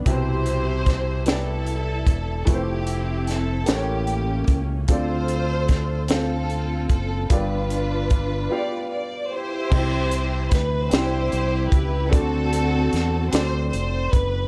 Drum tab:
CC |------|------|------|------|
HH |xxxxxx|xxxxxx|xxxxxx|xxx---|
SD |--oo--|--oo--|--oo--|------|
BD |o-o--o|o----o|o-o--o|o-o---|

CC |x-----|------|
HH |-xxxxx|xxxxxx|
SD |--oo--|--oo--|
BD |o-o--o|o----o|